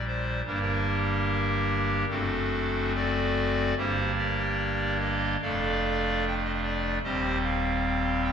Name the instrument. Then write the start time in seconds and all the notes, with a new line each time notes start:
pipe organ
Already playing: A#1 A#2 G3
0.07 C5
0.46 G1 G2 G3 A#3 D4 A#4
0.53 C5
0.61 D4 G4 A#4
2.09 F#1 F#2 A3 C4 D4 F#4 A4
2.95 F#4 A4 D5
3.77 G1 G2 G3 A#3 D4 G4 C5
4.18 G4 A#4 D5
5.00 D#5
5.42 F1 F2 A3 D4 A4 D5 F5
6.27 G5
6.36 F5
6.45 D#5
6.54 F5
6.63 D5
7.03 D#1 D#2 G3 C4 G4 C5 D#5
7.43 F5
8.24 G5